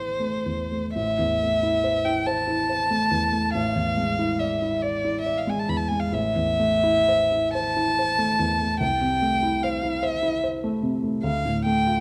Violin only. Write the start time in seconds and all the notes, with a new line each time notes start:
Already playing: C5
0.94 E5
2.05 G5
2.26 A5
3.54 F5
4.39 E5
4.83 D5
5.21 E5
5.38 F5
5.50 G#5
5.59 A5
5.69 B5
5.77 A5
5.88 G#5
6.00 F5
6.13 E5
7.54 A5
8.80 G5
9.63 F5
10.03 E5
11.24 F5
11.65 G5